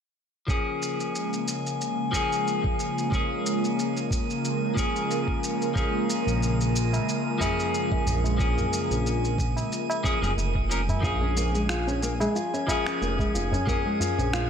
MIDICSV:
0, 0, Header, 1, 8, 480
1, 0, Start_track
1, 0, Key_signature, -5, "minor"
1, 0, Tempo, 659341
1, 355, Time_signature, 4, 2, 24, 8
1, 10555, End_track
2, 0, Start_track
2, 0, Title_t, "Synth texture"
2, 0, Program_c, 0, 99
2, 356, Note_on_c, 0, 80, 75
2, 8025, Note_off_c, 0, 80, 0
2, 8034, Note_on_c, 0, 80, 79
2, 10555, Note_off_c, 0, 80, 0
2, 10555, End_track
3, 0, Start_track
3, 0, Title_t, "Nylon-string guitar"
3, 0, Program_c, 1, 24
3, 8032, Note_on_c, 1, 65, 74
3, 8152, Note_off_c, 1, 65, 0
3, 8165, Note_on_c, 1, 61, 91
3, 8264, Note_off_c, 1, 61, 0
3, 8275, Note_on_c, 1, 58, 62
3, 8400, Note_off_c, 1, 58, 0
3, 8403, Note_on_c, 1, 56, 70
3, 8503, Note_off_c, 1, 56, 0
3, 8511, Note_on_c, 1, 65, 76
3, 8638, Note_off_c, 1, 65, 0
3, 8645, Note_on_c, 1, 61, 91
3, 8743, Note_off_c, 1, 61, 0
3, 8754, Note_on_c, 1, 58, 94
3, 8830, Note_off_c, 1, 58, 0
3, 8884, Note_on_c, 1, 56, 89
3, 8989, Note_off_c, 1, 56, 0
3, 8994, Note_on_c, 1, 65, 78
3, 9113, Note_off_c, 1, 65, 0
3, 9125, Note_on_c, 1, 61, 70
3, 9229, Note_off_c, 1, 61, 0
3, 9235, Note_on_c, 1, 65, 68
3, 9353, Note_off_c, 1, 65, 0
3, 9365, Note_on_c, 1, 61, 98
3, 9464, Note_off_c, 1, 61, 0
3, 9474, Note_on_c, 1, 58, 73
3, 9599, Note_off_c, 1, 58, 0
3, 9605, Note_on_c, 1, 56, 69
3, 9704, Note_off_c, 1, 56, 0
3, 9716, Note_on_c, 1, 65, 76
3, 9840, Note_off_c, 1, 65, 0
3, 9846, Note_on_c, 1, 61, 98
3, 9944, Note_off_c, 1, 61, 0
3, 9953, Note_on_c, 1, 58, 96
3, 10029, Note_off_c, 1, 58, 0
3, 10086, Note_on_c, 1, 56, 86
3, 10190, Note_off_c, 1, 56, 0
3, 10194, Note_on_c, 1, 65, 64
3, 10313, Note_off_c, 1, 65, 0
3, 10325, Note_on_c, 1, 61, 73
3, 10429, Note_off_c, 1, 61, 0
3, 10436, Note_on_c, 1, 65, 79
3, 10554, Note_off_c, 1, 65, 0
3, 10555, End_track
4, 0, Start_track
4, 0, Title_t, "Clean electric guitar"
4, 0, Program_c, 2, 27
4, 340, Note_on_c, 2, 53, 61
4, 348, Note_on_c, 2, 58, 60
4, 357, Note_on_c, 2, 61, 55
4, 366, Note_on_c, 2, 68, 69
4, 1521, Note_off_c, 2, 53, 0
4, 1526, Note_off_c, 2, 58, 0
4, 1530, Note_off_c, 2, 61, 0
4, 1535, Note_off_c, 2, 68, 0
4, 1540, Note_on_c, 2, 53, 86
4, 1550, Note_on_c, 2, 58, 80
4, 1559, Note_on_c, 2, 61, 83
4, 1570, Note_on_c, 2, 68, 92
4, 2241, Note_off_c, 2, 53, 0
4, 2247, Note_off_c, 2, 58, 0
4, 2251, Note_off_c, 2, 61, 0
4, 2256, Note_off_c, 2, 68, 0
4, 2263, Note_on_c, 2, 53, 65
4, 2271, Note_on_c, 2, 58, 58
4, 2280, Note_on_c, 2, 61, 59
4, 2293, Note_on_c, 2, 68, 73
4, 3443, Note_off_c, 2, 53, 0
4, 3447, Note_off_c, 2, 58, 0
4, 3452, Note_off_c, 2, 61, 0
4, 3454, Note_on_c, 2, 53, 65
4, 3458, Note_off_c, 2, 68, 0
4, 3463, Note_on_c, 2, 58, 62
4, 3474, Note_on_c, 2, 61, 63
4, 3485, Note_on_c, 2, 68, 74
4, 4159, Note_off_c, 2, 53, 0
4, 4163, Note_off_c, 2, 58, 0
4, 4169, Note_off_c, 2, 61, 0
4, 4174, Note_off_c, 2, 68, 0
4, 4177, Note_on_c, 2, 53, 66
4, 4187, Note_on_c, 2, 58, 57
4, 4198, Note_on_c, 2, 61, 61
4, 4208, Note_on_c, 2, 68, 72
4, 5360, Note_off_c, 2, 53, 0
4, 5365, Note_off_c, 2, 58, 0
4, 5371, Note_off_c, 2, 61, 0
4, 5374, Note_on_c, 2, 53, 95
4, 5375, Note_off_c, 2, 68, 0
4, 5384, Note_on_c, 2, 58, 84
4, 5393, Note_on_c, 2, 61, 89
4, 5403, Note_on_c, 2, 68, 106
4, 6079, Note_off_c, 2, 53, 0
4, 6084, Note_off_c, 2, 58, 0
4, 6088, Note_off_c, 2, 61, 0
4, 6093, Note_off_c, 2, 68, 0
4, 6093, Note_on_c, 2, 53, 70
4, 6103, Note_on_c, 2, 58, 66
4, 6112, Note_on_c, 2, 61, 67
4, 6121, Note_on_c, 2, 68, 72
4, 7278, Note_off_c, 2, 53, 0
4, 7283, Note_off_c, 2, 58, 0
4, 7287, Note_off_c, 2, 61, 0
4, 7292, Note_off_c, 2, 68, 0
4, 7304, Note_on_c, 2, 53, 87
4, 7307, Note_on_c, 2, 58, 81
4, 7313, Note_on_c, 2, 61, 80
4, 7318, Note_on_c, 2, 68, 98
4, 7409, Note_off_c, 2, 53, 0
4, 7411, Note_off_c, 2, 58, 0
4, 7414, Note_off_c, 2, 61, 0
4, 7416, Note_off_c, 2, 68, 0
4, 7437, Note_on_c, 2, 53, 78
4, 7442, Note_on_c, 2, 58, 69
4, 7446, Note_on_c, 2, 61, 67
4, 7453, Note_on_c, 2, 68, 79
4, 7498, Note_off_c, 2, 53, 0
4, 7501, Note_off_c, 2, 58, 0
4, 7503, Note_off_c, 2, 61, 0
4, 7506, Note_off_c, 2, 68, 0
4, 7786, Note_on_c, 2, 53, 70
4, 7789, Note_on_c, 2, 58, 68
4, 7796, Note_on_c, 2, 61, 64
4, 7801, Note_on_c, 2, 70, 77
4, 7859, Note_off_c, 2, 53, 0
4, 7861, Note_off_c, 2, 58, 0
4, 7864, Note_off_c, 2, 61, 0
4, 7866, Note_off_c, 2, 70, 0
4, 8011, Note_on_c, 2, 53, 68
4, 8021, Note_on_c, 2, 58, 63
4, 8032, Note_on_c, 2, 61, 60
4, 8041, Note_on_c, 2, 68, 71
4, 9197, Note_off_c, 2, 53, 0
4, 9202, Note_off_c, 2, 58, 0
4, 9208, Note_off_c, 2, 61, 0
4, 9212, Note_off_c, 2, 68, 0
4, 9221, Note_on_c, 2, 53, 93
4, 9232, Note_on_c, 2, 58, 89
4, 9242, Note_on_c, 2, 61, 90
4, 9251, Note_on_c, 2, 68, 108
4, 9922, Note_off_c, 2, 53, 0
4, 9928, Note_off_c, 2, 58, 0
4, 9932, Note_off_c, 2, 61, 0
4, 9937, Note_off_c, 2, 68, 0
4, 9941, Note_on_c, 2, 53, 71
4, 9949, Note_on_c, 2, 58, 63
4, 9959, Note_on_c, 2, 61, 66
4, 9968, Note_on_c, 2, 68, 74
4, 10555, Note_off_c, 2, 53, 0
4, 10555, Note_off_c, 2, 58, 0
4, 10555, Note_off_c, 2, 61, 0
4, 10555, Note_off_c, 2, 68, 0
4, 10555, End_track
5, 0, Start_track
5, 0, Title_t, "Analog synth pad"
5, 0, Program_c, 3, 89
5, 353, Note_on_c, 3, 49, 72
5, 502, Note_on_c, 3, 58, 80
5, 634, Note_on_c, 3, 56, 75
5, 1623, Note_on_c, 3, 65, 72
5, 1957, Note_on_c, 3, 70, 64
5, 8032, Note_off_c, 3, 58, 0
5, 8034, Note_off_c, 3, 49, 0
5, 8034, Note_off_c, 3, 56, 0
5, 8034, Note_off_c, 3, 65, 0
5, 8036, Note_off_c, 3, 70, 0
5, 10555, End_track
6, 0, Start_track
6, 0, Title_t, "Analog synth bass"
6, 0, Program_c, 4, 38
6, 4561, Note_on_c, 4, 34, 84
6, 5090, Note_off_c, 4, 34, 0
6, 5876, Note_on_c, 4, 34, 91
6, 6293, Note_off_c, 4, 34, 0
6, 6484, Note_on_c, 4, 34, 89
6, 7012, Note_off_c, 4, 34, 0
6, 7445, Note_on_c, 4, 29, 95
6, 7516, Note_off_c, 4, 29, 0
6, 7551, Note_on_c, 4, 29, 87
6, 7971, Note_off_c, 4, 29, 0
6, 8031, Note_on_c, 4, 34, 89
6, 8930, Note_off_c, 4, 34, 0
6, 9476, Note_on_c, 4, 29, 73
6, 9638, Note_off_c, 4, 29, 0
6, 9713, Note_on_c, 4, 29, 78
6, 9876, Note_off_c, 4, 29, 0
6, 10325, Note_on_c, 4, 34, 84
6, 10555, Note_off_c, 4, 34, 0
6, 10555, End_track
7, 0, Start_track
7, 0, Title_t, "Tabla"
7, 4438, Note_on_c, 9, 63, 29
7, 4511, Note_off_c, 9, 63, 0
7, 5041, Note_on_c, 9, 63, 48
7, 5047, Note_on_c, 9, 60, 59
7, 5114, Note_off_c, 9, 63, 0
7, 5120, Note_off_c, 9, 60, 0
7, 5283, Note_on_c, 9, 63, 47
7, 5356, Note_off_c, 9, 63, 0
7, 5393, Note_on_c, 9, 60, 67
7, 5394, Note_on_c, 9, 64, 75
7, 5466, Note_off_c, 9, 60, 0
7, 5467, Note_off_c, 9, 64, 0
7, 5766, Note_on_c, 9, 63, 60
7, 5839, Note_off_c, 9, 63, 0
7, 5869, Note_on_c, 9, 64, 79
7, 5941, Note_off_c, 9, 64, 0
7, 6000, Note_on_c, 9, 63, 47
7, 6072, Note_off_c, 9, 63, 0
7, 6249, Note_on_c, 9, 64, 88
7, 6322, Note_off_c, 9, 64, 0
7, 6352, Note_on_c, 9, 63, 29
7, 6425, Note_off_c, 9, 63, 0
7, 6962, Note_on_c, 9, 63, 46
7, 6964, Note_on_c, 9, 60, 58
7, 7035, Note_off_c, 9, 63, 0
7, 7037, Note_off_c, 9, 60, 0
7, 7204, Note_on_c, 9, 60, 76
7, 7277, Note_off_c, 9, 60, 0
7, 7444, Note_on_c, 9, 64, 92
7, 7517, Note_off_c, 9, 64, 0
7, 7554, Note_on_c, 9, 60, 30
7, 7626, Note_off_c, 9, 60, 0
7, 7688, Note_on_c, 9, 63, 52
7, 7760, Note_off_c, 9, 63, 0
7, 7927, Note_on_c, 9, 64, 95
7, 7930, Note_on_c, 9, 63, 42
7, 7932, Note_on_c, 9, 60, 76
7, 7999, Note_off_c, 9, 64, 0
7, 8003, Note_off_c, 9, 63, 0
7, 8005, Note_off_c, 9, 60, 0
7, 8274, Note_on_c, 9, 63, 32
7, 8347, Note_off_c, 9, 63, 0
7, 8884, Note_on_c, 9, 60, 64
7, 8888, Note_on_c, 9, 63, 47
7, 8957, Note_off_c, 9, 60, 0
7, 8961, Note_off_c, 9, 63, 0
7, 9127, Note_on_c, 9, 63, 57
7, 9199, Note_off_c, 9, 63, 0
7, 9232, Note_on_c, 9, 60, 72
7, 9304, Note_off_c, 9, 60, 0
7, 9608, Note_on_c, 9, 63, 62
7, 9680, Note_off_c, 9, 63, 0
7, 9841, Note_on_c, 9, 63, 52
7, 9843, Note_on_c, 9, 64, 81
7, 9913, Note_off_c, 9, 63, 0
7, 9916, Note_off_c, 9, 64, 0
7, 10190, Note_on_c, 9, 63, 35
7, 10193, Note_on_c, 9, 64, 69
7, 10263, Note_off_c, 9, 63, 0
7, 10266, Note_off_c, 9, 64, 0
7, 10555, End_track
8, 0, Start_track
8, 0, Title_t, "Drums"
8, 351, Note_on_c, 9, 36, 107
8, 360, Note_on_c, 9, 82, 38
8, 424, Note_off_c, 9, 36, 0
8, 433, Note_off_c, 9, 82, 0
8, 600, Note_on_c, 9, 82, 71
8, 672, Note_off_c, 9, 82, 0
8, 730, Note_on_c, 9, 82, 28
8, 803, Note_off_c, 9, 82, 0
8, 839, Note_on_c, 9, 82, 39
8, 912, Note_off_c, 9, 82, 0
8, 971, Note_on_c, 9, 82, 27
8, 1043, Note_off_c, 9, 82, 0
8, 1077, Note_on_c, 9, 82, 68
8, 1150, Note_off_c, 9, 82, 0
8, 1212, Note_on_c, 9, 82, 29
8, 1285, Note_off_c, 9, 82, 0
8, 1321, Note_on_c, 9, 82, 41
8, 1394, Note_off_c, 9, 82, 0
8, 1552, Note_on_c, 9, 36, 52
8, 1559, Note_on_c, 9, 82, 72
8, 1625, Note_off_c, 9, 36, 0
8, 1632, Note_off_c, 9, 82, 0
8, 1692, Note_on_c, 9, 82, 30
8, 1765, Note_off_c, 9, 82, 0
8, 1802, Note_on_c, 9, 82, 38
8, 1875, Note_off_c, 9, 82, 0
8, 1924, Note_on_c, 9, 36, 97
8, 1996, Note_off_c, 9, 36, 0
8, 2036, Note_on_c, 9, 82, 65
8, 2109, Note_off_c, 9, 82, 0
8, 2171, Note_on_c, 9, 82, 30
8, 2244, Note_off_c, 9, 82, 0
8, 2272, Note_on_c, 9, 36, 104
8, 2281, Note_on_c, 9, 82, 39
8, 2344, Note_off_c, 9, 36, 0
8, 2354, Note_off_c, 9, 82, 0
8, 2521, Note_on_c, 9, 82, 75
8, 2594, Note_off_c, 9, 82, 0
8, 2654, Note_on_c, 9, 82, 29
8, 2726, Note_off_c, 9, 82, 0
8, 2761, Note_on_c, 9, 82, 43
8, 2834, Note_off_c, 9, 82, 0
8, 2890, Note_on_c, 9, 82, 29
8, 2962, Note_off_c, 9, 82, 0
8, 2991, Note_on_c, 9, 36, 97
8, 3001, Note_on_c, 9, 82, 74
8, 3064, Note_off_c, 9, 36, 0
8, 3073, Note_off_c, 9, 82, 0
8, 3132, Note_on_c, 9, 82, 31
8, 3205, Note_off_c, 9, 82, 0
8, 3238, Note_on_c, 9, 82, 44
8, 3311, Note_off_c, 9, 82, 0
8, 3471, Note_on_c, 9, 36, 99
8, 3478, Note_on_c, 9, 82, 75
8, 3544, Note_off_c, 9, 36, 0
8, 3551, Note_off_c, 9, 82, 0
8, 3611, Note_on_c, 9, 82, 32
8, 3684, Note_off_c, 9, 82, 0
8, 3719, Note_on_c, 9, 82, 43
8, 3791, Note_off_c, 9, 82, 0
8, 3842, Note_on_c, 9, 36, 58
8, 3915, Note_off_c, 9, 36, 0
8, 3958, Note_on_c, 9, 82, 71
8, 4031, Note_off_c, 9, 82, 0
8, 4090, Note_on_c, 9, 82, 31
8, 4163, Note_off_c, 9, 82, 0
8, 4191, Note_on_c, 9, 36, 106
8, 4200, Note_on_c, 9, 82, 39
8, 4264, Note_off_c, 9, 36, 0
8, 4273, Note_off_c, 9, 82, 0
8, 4439, Note_on_c, 9, 82, 79
8, 4512, Note_off_c, 9, 82, 0
8, 4571, Note_on_c, 9, 82, 31
8, 4644, Note_off_c, 9, 82, 0
8, 4680, Note_on_c, 9, 82, 42
8, 4753, Note_off_c, 9, 82, 0
8, 4811, Note_on_c, 9, 82, 30
8, 4883, Note_off_c, 9, 82, 0
8, 4920, Note_on_c, 9, 82, 72
8, 4993, Note_off_c, 9, 82, 0
8, 5052, Note_on_c, 9, 82, 34
8, 5124, Note_off_c, 9, 82, 0
8, 5160, Note_on_c, 9, 82, 43
8, 5233, Note_off_c, 9, 82, 0
8, 5391, Note_on_c, 9, 36, 57
8, 5397, Note_on_c, 9, 82, 76
8, 5464, Note_off_c, 9, 36, 0
8, 5470, Note_off_c, 9, 82, 0
8, 5531, Note_on_c, 9, 82, 32
8, 5603, Note_off_c, 9, 82, 0
8, 5638, Note_on_c, 9, 82, 43
8, 5711, Note_off_c, 9, 82, 0
8, 5763, Note_on_c, 9, 36, 96
8, 5836, Note_off_c, 9, 36, 0
8, 5876, Note_on_c, 9, 82, 72
8, 5949, Note_off_c, 9, 82, 0
8, 6009, Note_on_c, 9, 82, 32
8, 6082, Note_off_c, 9, 82, 0
8, 6112, Note_on_c, 9, 36, 113
8, 6116, Note_on_c, 9, 82, 41
8, 6185, Note_off_c, 9, 36, 0
8, 6189, Note_off_c, 9, 82, 0
8, 6247, Note_on_c, 9, 82, 27
8, 6320, Note_off_c, 9, 82, 0
8, 6357, Note_on_c, 9, 82, 75
8, 6430, Note_off_c, 9, 82, 0
8, 6489, Note_on_c, 9, 82, 29
8, 6562, Note_off_c, 9, 82, 0
8, 6600, Note_on_c, 9, 82, 39
8, 6673, Note_off_c, 9, 82, 0
8, 6732, Note_on_c, 9, 82, 29
8, 6805, Note_off_c, 9, 82, 0
8, 6832, Note_on_c, 9, 36, 102
8, 6839, Note_on_c, 9, 82, 70
8, 6905, Note_off_c, 9, 36, 0
8, 6912, Note_off_c, 9, 82, 0
8, 6970, Note_on_c, 9, 82, 33
8, 7043, Note_off_c, 9, 82, 0
8, 7078, Note_on_c, 9, 82, 43
8, 7151, Note_off_c, 9, 82, 0
8, 7212, Note_on_c, 9, 82, 31
8, 7285, Note_off_c, 9, 82, 0
8, 7312, Note_on_c, 9, 36, 99
8, 7319, Note_on_c, 9, 82, 73
8, 7385, Note_off_c, 9, 36, 0
8, 7392, Note_off_c, 9, 82, 0
8, 7453, Note_on_c, 9, 82, 33
8, 7526, Note_off_c, 9, 82, 0
8, 7561, Note_on_c, 9, 82, 43
8, 7634, Note_off_c, 9, 82, 0
8, 7683, Note_on_c, 9, 36, 59
8, 7756, Note_off_c, 9, 36, 0
8, 7798, Note_on_c, 9, 82, 69
8, 7871, Note_off_c, 9, 82, 0
8, 7929, Note_on_c, 9, 82, 31
8, 8002, Note_off_c, 9, 82, 0
8, 8031, Note_on_c, 9, 36, 113
8, 8039, Note_on_c, 9, 82, 41
8, 8104, Note_off_c, 9, 36, 0
8, 8112, Note_off_c, 9, 82, 0
8, 8277, Note_on_c, 9, 82, 78
8, 8350, Note_off_c, 9, 82, 0
8, 8409, Note_on_c, 9, 82, 29
8, 8482, Note_off_c, 9, 82, 0
8, 8512, Note_on_c, 9, 26, 75
8, 8519, Note_on_c, 9, 82, 41
8, 8585, Note_off_c, 9, 26, 0
8, 8591, Note_off_c, 9, 82, 0
8, 8650, Note_on_c, 9, 82, 28
8, 8723, Note_off_c, 9, 82, 0
8, 8758, Note_on_c, 9, 82, 73
8, 8831, Note_off_c, 9, 82, 0
8, 8891, Note_on_c, 9, 82, 32
8, 8963, Note_off_c, 9, 82, 0
8, 8997, Note_on_c, 9, 82, 44
8, 9070, Note_off_c, 9, 82, 0
8, 9132, Note_on_c, 9, 82, 30
8, 9205, Note_off_c, 9, 82, 0
8, 9232, Note_on_c, 9, 36, 54
8, 9241, Note_on_c, 9, 82, 76
8, 9305, Note_off_c, 9, 36, 0
8, 9313, Note_off_c, 9, 82, 0
8, 9366, Note_on_c, 9, 26, 81
8, 9372, Note_on_c, 9, 82, 33
8, 9438, Note_off_c, 9, 26, 0
8, 9445, Note_off_c, 9, 82, 0
8, 9480, Note_on_c, 9, 82, 42
8, 9553, Note_off_c, 9, 82, 0
8, 9603, Note_on_c, 9, 36, 102
8, 9615, Note_on_c, 9, 82, 29
8, 9676, Note_off_c, 9, 36, 0
8, 9687, Note_off_c, 9, 82, 0
8, 9721, Note_on_c, 9, 82, 70
8, 9794, Note_off_c, 9, 82, 0
8, 9856, Note_on_c, 9, 82, 32
8, 9929, Note_off_c, 9, 82, 0
8, 9953, Note_on_c, 9, 36, 116
8, 9965, Note_on_c, 9, 82, 45
8, 10026, Note_off_c, 9, 36, 0
8, 10038, Note_off_c, 9, 82, 0
8, 10203, Note_on_c, 9, 82, 80
8, 10275, Note_off_c, 9, 82, 0
8, 10333, Note_on_c, 9, 82, 29
8, 10405, Note_off_c, 9, 82, 0
8, 10436, Note_on_c, 9, 26, 77
8, 10442, Note_on_c, 9, 82, 44
8, 10508, Note_off_c, 9, 26, 0
8, 10515, Note_off_c, 9, 82, 0
8, 10555, End_track
0, 0, End_of_file